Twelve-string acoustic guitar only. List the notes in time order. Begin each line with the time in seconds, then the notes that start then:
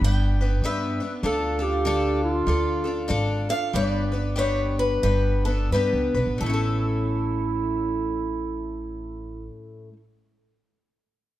0.05 G3 B3 D4 B4
0.41 B3 D4 B4
0.64 G3 B3 D4 B4
1.00 B3 D4 B4
1.23 D3 D4 F4 A4
1.59 D4 F4 A4
1.85 D3 D4 F4 A4
2.47 D3 D4 F4 A4
2.84 D4 F4 A4
3.08 D3 D4 F4 A4
3.49 D4 F4 A4
3.73 G3 B3 D4 B4
4.12 B3 D4 B4
4.36 G3 B3 D4 B4
5.03 G3 B3 D4 B4
5.46 B3 D4 B4
5.74 G3 B3 D4 B4
6.15 B3 D4 B4
6.38 A2
6.43 A3 C#4
6.50 E4 A4